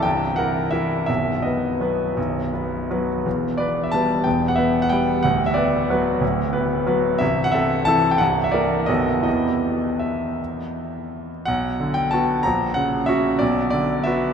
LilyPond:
<<
  \new Staff \with { instrumentName = "Grand piano" } { \time 3/4 \key e \minor \tempo 4 = 179 g''4 fis''4 e''4 | e''4 dis''2~ | dis''2~ dis''8 r8 | r4 d''8. e''16 a''4 |
g''8. fis''16 e''8. fis''16 g''4 | fis''8. e''16 d''2~ | d''2~ d''8 r8 | e''8. fis''16 e''4 a''8. g''16 |
fis''8. e''16 d''4 dis''4 | dis''2 e''4~ | e''2~ e''8 r8 | \key b \minor fis''4. g''8 a''4 |
ais''4 fis''4 e''4 | d''4 d''4 e''4 | }
  \new Staff \with { instrumentName = "Grand piano" } { \time 3/4 \key e \minor <c,, c,>4 <e' bes'>4 <e e' bes'>4 | <b,,, b,,>4 <b b'>4 <fis b b'>4 | <b,,, b,,>4 <b b'>4 <fis b b'>4 | <e,, e,>4 <b b'>4 <g b b'>4 |
<e,, e,>4 <b b'>4 <g b b'>4 | <d,, d,>4 <b b'>4 <fis b b'>4 | <d,, d,>4 <b b'>4 <fis b b'>4 | <c,, c,>4 <c' a'>4 <e c' a'>4 |
<c,, c,>4 <bes bes'>4 <b,,, b,, fis b a'>4 | <e, e b g'>2.~ | <e, e b g'>2. | \key b \minor b,,4 d4 <b fis'>4 |
ais,,4 cis4 <cis' fis'>4 | b,,4 d4 <b fis'>4 | }
>>